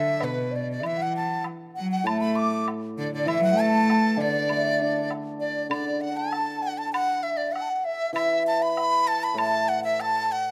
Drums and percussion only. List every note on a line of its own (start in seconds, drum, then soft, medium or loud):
0.21 high woodblock soft
0.21 low woodblock soft
0.83 high woodblock medium
1.44 high woodblock soft
1.44 low woodblock soft
2.07 high woodblock medium
2.68 high woodblock soft
2.68 low woodblock soft
3.28 high woodblock medium
3.90 high woodblock soft
3.90 low woodblock soft
4.49 high woodblock soft
5.11 high woodblock soft
5.11 low woodblock soft
5.71 high woodblock medium
6.33 low woodblock soft
6.94 high woodblock medium
7.56 low woodblock soft
8.16 high woodblock medium
8.77 low woodblock soft
9.38 high woodblock medium
10.00 low woodblock soft